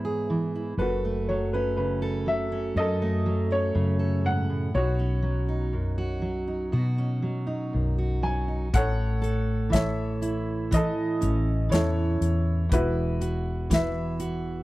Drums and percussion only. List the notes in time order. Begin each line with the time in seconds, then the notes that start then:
8.74 kick, closed hi-hat
9.24 closed hi-hat
9.73 kick, snare, closed hi-hat
10.22 closed hi-hat
10.72 kick, closed hi-hat
11.22 closed hi-hat
11.72 snare, closed hi-hat
12.22 closed hi-hat
12.72 kick, closed hi-hat
13.22 closed hi-hat
13.71 kick, snare, closed hi-hat
14.20 closed hi-hat